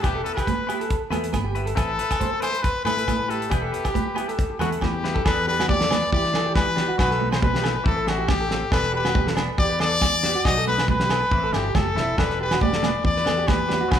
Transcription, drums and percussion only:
0.03 kick medium
0.03 cross-stick medium
0.03 closed hi-hat soft
0.03 muted conga soft
0.03 low agogo medium
0.26 closed hi-hat medium
0.37 kick medium
0.37 cross-stick medium
0.37 closed hi-hat soft
0.37 low agogo medium
0.47 kick medium
0.47 closed hi-hat soft
0.47 high conga medium
0.69 closed hi-hat soft
0.69 muted conga soft
0.69 low agogo medium
0.81 closed hi-hat soft
0.90 kick medium
0.90 closed hi-hat soft
0.90 muted conga soft
1.12 cross-stick medium
1.12 closed hi-hat soft
1.12 muted conga soft
1.12 high conga medium
1.12 low agogo medium
1.24 closed hi-hat medium
1.33 kick medium
1.33 cross-stick medium
1.33 closed hi-hat medium
1.33 high conga medium
1.33 low agogo medium
1.55 closed hi-hat soft
1.67 closed hi-hat medium
1.77 kick medium
1.77 cross-stick medium
1.77 closed hi-hat soft
1.77 muted conga soft
1.77 low agogo medium
1.99 closed hi-hat medium
2.11 kick medium
2.11 cross-stick medium
2.11 closed hi-hat medium
2.11 low agogo medium
2.21 kick medium
2.21 closed hi-hat medium
2.21 high conga medium
2.42 cross-stick medium
2.42 closed hi-hat medium
2.42 muted conga soft
2.42 low agogo medium
2.55 closed hi-hat medium
2.64 kick medium
2.64 closed hi-hat soft
2.64 muted conga soft
2.86 cross-stick medium
2.86 closed hi-hat soft
2.86 muted conga soft
2.86 high conga medium
2.86 low agogo medium
2.98 closed hi-hat soft
3.08 kick medium
3.08 cross-stick medium
3.08 closed hi-hat soft
3.08 high conga medium
3.08 low agogo medium
3.30 closed hi-hat soft
3.42 closed hi-hat soft
3.51 kick medium
3.51 cross-stick medium
3.51 closed hi-hat soft
3.51 muted conga soft
3.51 low agogo medium
3.74 closed hi-hat medium
3.85 kick medium
3.85 cross-stick medium
3.85 closed hi-hat medium
3.85 low agogo medium
3.95 kick medium
3.95 closed hi-hat soft
3.95 high conga medium
4.16 closed hi-hat soft
4.16 muted conga soft
4.16 low agogo medium
4.29 closed hi-hat soft
4.39 kick medium
4.39 closed hi-hat soft
4.39 muted conga soft
4.59 cross-stick medium
4.59 closed hi-hat soft
4.59 muted conga soft
4.59 high conga medium
4.59 low conga medium
4.59 low agogo medium
4.72 closed hi-hat soft
4.81 kick medium
4.81 snare soft
4.81 high conga medium
4.81 low agogo medium
5.05 snare medium
5.16 kick medium
5.26 kick medium
5.26 snare medium
5.26 low agogo medium
5.60 snare medium
5.60 low agogo medium
5.69 kick medium
5.69 high conga medium
5.81 snare medium
5.91 snare medium
5.91 muted conga soft
5.91 high conga medium
5.91 low agogo medium
6.12 kick loud
6.12 muted conga soft
6.24 snare soft
6.34 snare medium
6.34 low agogo medium
6.55 kick loud
6.55 snare medium
6.55 high conga medium
6.55 low agogo medium
6.77 snare medium
6.99 kick loud
6.99 snare medium
6.99 muted conga soft
6.99 low agogo medium
7.11 snare soft
7.21 high conga medium
7.32 snare medium
7.32 low agogo medium
7.42 kick loud
7.42 high conga medium
7.55 snare medium
7.64 snare medium
7.64 muted conga soft
7.64 low agogo medium
7.86 kick loud
7.86 muted conga soft
8.07 snare medium
8.07 muted conga soft
8.07 low agogo medium
8.28 kick loud
8.28 snare medium
8.28 high conga medium
8.28 low agogo medium
8.51 snare medium
8.72 kick medium
8.72 snare medium
8.72 muted conga soft
8.72 low agogo medium
8.83 snare soft
9.05 snare medium
9.05 low agogo medium
9.15 kick loud
9.15 high conga medium
9.27 snare medium
9.37 snare medium
9.37 muted conga soft
9.37 low agogo medium
9.58 kick loud
9.58 muted conga soft
9.80 snare medium
9.80 low agogo medium
10.01 kick loud
10.01 snare medium
10.01 high conga medium
10.01 low agogo medium
10.23 snare medium
10.45 kick loud
10.45 snare medium
10.45 muted conga soft
10.45 low agogo medium
10.67 high conga medium
10.78 snare medium
10.78 low agogo medium
10.88 kick medium
10.88 high conga medium
11.00 snare medium
11.09 snare medium
11.09 muted conga soft
11.09 low agogo medium
11.31 kick loud
11.31 muted conga soft
11.53 snare medium
11.53 muted conga soft
11.53 low agogo medium
11.75 kick loud
11.75 snare medium
11.75 high conga medium
11.75 low agogo medium
11.97 snare medium
12.18 kick medium
12.18 snare medium
12.18 muted conga soft
12.18 low agogo medium
12.30 snare soft
12.51 snare medium
12.51 low agogo medium
12.61 kick medium
12.61 high conga loud
12.73 snare medium
12.83 snare medium
12.83 muted conga soft
12.83 high conga medium
12.83 low agogo medium
13.05 kick loud
13.05 muted conga soft
13.17 snare soft
13.26 snare medium
13.26 muted conga soft
13.26 low agogo medium
13.48 kick loud
13.48 snare medium
13.48 high conga medium
13.48 low agogo medium
13.70 snare medium
13.91 kick loud
13.91 snare medium
13.91 muted conga soft
13.91 low agogo medium

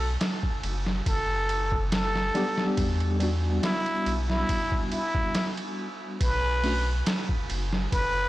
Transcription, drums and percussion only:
0.21 snare loud
0.21 ride medium
0.43 kick medium
0.63 ride medium
0.86 snare soft
1.06 kick loud
1.06 ride medium
1.49 ride medium
1.72 kick medium
1.92 snare loud
1.92 ride medium
2.16 snare medium
2.35 snare soft
2.35 ride medium
2.58 snare medium
2.77 kick loud
2.77 ride medium
3.00 ride soft
3.20 ride medium
3.63 snare loud
3.63 ride medium
3.86 ride soft
4.06 ride medium
4.30 snare soft
4.49 kick loud
4.49 ride medium
4.72 kick medium
4.92 ride medium
5.15 kick loud
5.35 snare loud
5.35 ride medium
5.57 ride soft
6.21 kick loud
6.21 ride medium
6.64 open hi-hat medium
7.06 snare loud
7.06 ride medium
7.29 kick medium
7.50 ride medium
7.73 snare soft
7.92 kick loud
7.92 ride medium

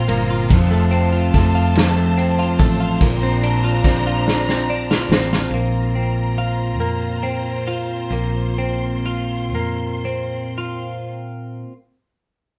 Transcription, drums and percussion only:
0.09 ride medium
0.50 kick loud
0.50 ride medium
0.92 ride soft
1.34 kick medium
1.34 snare soft
1.34 ride medium
1.75 snare loud
1.75 ride medium
2.19 ride soft
2.59 kick loud
2.59 ride medium
3.01 kick loud
3.01 ride medium
3.43 ride soft
3.84 kick medium
3.84 snare soft
3.84 ride medium
4.28 snare medium
4.49 snare medium
4.91 snare medium
5.12 snare loud
5.33 snare medium

